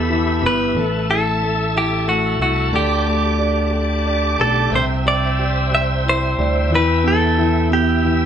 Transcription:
Already playing: fingered electric bass E2, grand piano E3 B3, tonewheel organ G4 E5 B5 E6, clean electric guitar A4
0.10 grand piano E3
0.42 fingered electric bass G1, grand piano B3
0.46 clean electric guitar B4
0.75 fingered electric bass A1, grand piano A3, tonewheel organ A4 A5
1.10 grand piano E4, clean electric guitar A4
1.43 grand piano A3
1.75 grand piano E4, clean electric guitar G4
2.08 grand piano A3, clean electric guitar F#4
2.39 fingered electric bass C2, grand piano E4, clean electric guitar F#4
2.71 fingered electric bass D2, grand piano D3, tonewheel organ G4 D5 A5 D6
2.76 clean electric guitar G4
3.06 grand piano A3
3.39 grand piano D4
3.71 grand piano A3
4.06 grand piano D4
4.39 fingered electric bass B1, grand piano A3, clean electric guitar A4
4.72 fingered electric bass C2, grand piano C3, tonewheel organ C5 E5 G5 E6, clean electric guitar C5
5.06 grand piano G3, clean electric guitar D5
5.39 grand piano G4
5.71 grand piano G3, clean electric guitar E5
6.05 grand piano E4
6.09 clean electric guitar C5
6.39 fingered electric bass D2, grand piano G3
6.71 fingered electric bass E2, grand piano E3
6.75 clean electric guitar B4
7.04 grand piano B3
7.08 clean electric guitar A4
7.38 grand piano E3
7.70 grand piano B3, clean electric guitar G4
8.04 grand piano E3

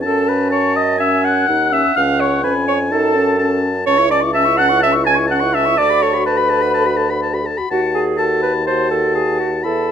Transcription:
0.02 bassoon F#2, french horn C#4, clarinet A4, oboe A5, flute A5
0.29 clarinet B4, flute B5
0.50 clarinet C#5, oboe A5, flute C#6
0.76 clarinet D#5, flute D#6
0.98 french horn C#4, clarinet E5, oboe G#5, flute E6
1.24 clarinet F#5, flute F#6
1.47 bassoon D#2, french horn D#4, oboe F#5
1.72 french horn C#4, clarinet E5, flute E6
1.96 bassoon C#2, french horn C#4, clarinet F5, flute F6
2.20 clarinet C#5, flute C#6
2.44 bassoon F2, french horn C#4, clarinet B4, oboe G#5, flute B5
2.68 clarinet C#5, flute C#6
2.91 bassoon F#2, french horn D#4, clarinet A4, flute A5, oboe A5
3.15 french horn C#4
3.39 french horn C#4, oboe A5
3.86 bassoon C#2, french horn C#4, clarinet C#5, oboe A5, flute C#6
3.98 french horn E4, oboe C#6
4.10 french horn C#4, clarinet D5, oboe A5, flute D6
4.21 french horn E4, oboe C#6
4.33 french horn C#4, clarinet E5, oboe A5, flute E6
4.45 french horn E4, oboe C#6
4.57 french horn C#4, clarinet F#5, oboe A5, flute F#6
4.69 french horn E4, oboe C#6
4.80 french horn C#4, clarinet E5, oboe A5, flute E6
4.92 french horn E4, oboe C#6
5.05 french horn C#4, clarinet G#5, oboe A5, flute G#6
5.15 oboe C#6
5.19 french horn E4
5.27 french horn C#4, clarinet F#5, oboe A5, flute F#6
5.40 french horn E4, oboe C#6
5.53 french horn C#4, clarinet E5, oboe A5, flute E6
5.66 french horn E4, oboe C#6
5.77 bassoon D2, french horn A4, clarinet D5, oboe A5, flute D6
5.90 french horn F#4, oboe B5
6.02 french horn A4, clarinet C#5, oboe A5, flute C#6
6.14 french horn F#4, oboe B5
6.26 french horn A4, clarinet B4, oboe A5, flute B5
6.37 french horn F#4, oboe B5
6.49 french horn A4, oboe A5
6.62 french horn F#4, oboe B5
6.74 french horn A4, oboe A5
6.86 french horn F#4, oboe B5
6.97 french horn A4, oboe A5
7.09 french horn F#4, oboe B5
7.21 french horn A4, oboe A5
7.34 french horn F#4, oboe B5
7.45 french horn A4, oboe A5
7.58 french horn F#4, oboe B5
7.70 bassoon D#2, french horn F#4, clarinet F#4, flute F#5, oboe A5
7.94 clarinet G#4, flute G#5
8.17 french horn F#4, clarinet A4, oboe A5, flute A5
8.42 clarinet B4, flute B5
8.66 french horn F#4, clarinet C5, oboe A5, flute C6
8.91 clarinet A4, flute A5
9.15 clarinet G#4, flute G#5
9.38 clarinet F#4, flute F#5
9.63 bassoon E2, french horn E4, clarinet A4, flute A5, oboe B5

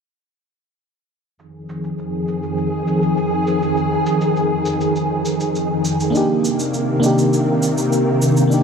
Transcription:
1.37 string machine F2 D#3 G#4, cabasa
1.69 cabasa
1.84 cabasa
1.98 cabasa
2.28 cabasa
2.43 cabasa
2.58 cabasa
2.87 cabasa
3.03 cabasa
3.17 cabasa
3.47 cabasa
3.62 cabasa
3.77 cabasa
4.06 cabasa
4.21 cabasa
4.36 cabasa
4.66 cabasa
4.81 cabasa
4.96 cabasa
5.25 cabasa
5.40 cabasa
5.55 cabasa
5.85 cabasa
6.00 cabasa
6.10 string machine C3 D#3 A#3, fm electric piano A#3 D4
6.15 fm electric piano D#4 G4, cabasa
6.45 cabasa
6.59 cabasa
6.74 cabasa
7.00 fm electric piano A#3 D4, cabasa
7.04 fm electric piano D#4 G4
7.18 cabasa
7.33 cabasa
7.63 cabasa
7.78 cabasa
7.93 cabasa
8.22 cabasa
8.37 cabasa
8.47 fm electric piano A#3 D4
8.52 fm electric piano D#4 G4, cabasa

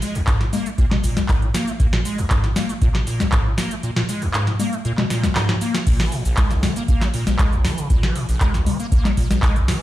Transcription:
0.02 acid bass G#3, open hi-hat, shaker
0.15 acid bass A#1, open hi-hat, shaker
0.27 acid bass G#2, kick, clap, closed hi-hat, shaker
0.40 acid bass A#2, snare, closed hi-hat
0.53 acid bass A#3, open hi-hat, low conga, shaker
0.66 acid bass G#3, closed hi-hat, shaker
0.78 acid bass A#2, kick, closed hi-hat, shaker
0.91 acid bass B2, snare, clap, closed hi-hat, low conga
1.03 acid bass A#2, kick, open hi-hat, shaker
1.17 acid bass A#1, snare, closed hi-hat, low conga, shaker
1.29 acid bass G#2, kick, clap, open hi-hat, shaker
1.42 acid bass A#2, closed hi-hat
1.54 acid bass A#3, snare, open hi-hat, shaker
1.67 acid bass G#3, closed hi-hat, shaker
1.80 acid bass A#2, kick, closed hi-hat, shaker
1.93 acid bass A#2, snare, closed hi-hat
2.05 acid bass G#3, open hi-hat, shaker
2.18 acid bass A#1, open hi-hat, shaker
2.30 acid bass G#2, kick, clap, closed hi-hat, shaker
2.44 acid bass A#2, snare, closed hi-hat
2.56 acid bass A#3, snare, open hi-hat, low conga, shaker
2.69 acid bass G#3, closed hi-hat, shaker
2.82 acid bass A#2, kick, closed hi-hat, shaker
2.94 acid bass B2, snare, clap, closed hi-hat
3.07 acid bass A#2, open hi-hat, shaker
3.20 acid bass A#1, snare, closed hi-hat, low conga, shaker
3.32 acid bass G#2, kick, clap, closed hi-hat, shaker
3.46 acid bass A#2
3.58 acid bass A#3, snare, open hi-hat, shaker
3.71 acid bass G#3, closed hi-hat, shaker
3.83 acid bass A#2, closed hi-hat, shaker
3.96 acid bass A#2, snare, closed hi-hat
4.09 acid bass G#3, open hi-hat, shaker
4.22 acid bass A#1, open hi-hat, shaker
4.34 acid bass G#2, clap, closed hi-hat, shaker
4.47 acid bass A#2, snare, closed hi-hat
4.60 acid bass A#3, open hi-hat, low conga, shaker
4.73 acid bass G#3, closed hi-hat, shaker
4.85 acid bass A#2, closed hi-hat, shaker
4.98 acid bass B2, snare, clap, closed hi-hat, low conga
5.10 acid bass A#2, snare, open hi-hat, shaker
5.24 acid bass A#1, snare, closed hi-hat, low conga, shaker
5.35 acid bass G#2, snare, clap, open hi-hat, shaker
5.49 acid bass A#2, snare, closed hi-hat
5.61 acid bass A#3, open hi-hat, shaker
5.74 acid bass G#3, snare, closed hi-hat, shaker
5.87 acid bass A#2, kick, closed hi-hat, crash, shaker
6.00 acid bass F3, snare, closed hi-hat, shaker
6.12 acid bass A#2, open hi-hat
6.25 acid bass A#1, open hi-hat, shaker
6.37 acid bass G#3, kick, clap, closed hi-hat, shaker
6.51 acid bass A#1, snare, closed hi-hat, shaker
6.63 acid bass F3, snare, open hi-hat, low conga
6.76 acid bass A#3, closed hi-hat, shaker
6.88 acid bass A#3, kick, closed hi-hat, shaker
7.01 acid bass F3, snare, clap, closed hi-hat, shaker
7.14 acid bass A#2, open hi-hat
7.27 acid bass A#1, snare, closed hi-hat, low conga, shaker
7.39 acid bass G#3, kick, clap, closed hi-hat, shaker
7.52 acid bass A#1, shaker
7.65 acid bass F3, snare, open hi-hat
7.78 acid bass C#3, closed hi-hat, shaker
7.90 acid bass A#2, kick, closed hi-hat, shaker
8.03 acid bass F3, snare, closed hi-hat, shaker
8.15 acid bass A#2, open hi-hat
8.29 acid bass A#1, open hi-hat, shaker
8.41 acid bass G#3, kick, clap, closed hi-hat, shaker
8.54 acid bass A#1, snare, closed hi-hat, shaker
8.66 acid bass F3, open hi-hat, low conga
8.80 acid bass A#3, closed hi-hat, shaker
8.92 acid bass A#3, kick, closed hi-hat, shaker
9.05 acid bass F3, snare, clap, closed hi-hat, low conga, shaker
9.17 acid bass A#2, kick, open hi-hat
9.30 acid bass A#1, snare, closed hi-hat, low conga, shaker
9.43 acid bass G#3, kick, clap, open hi-hat, shaker
9.56 acid bass A#1, closed hi-hat, shaker
9.68 acid bass F3, snare, open hi-hat

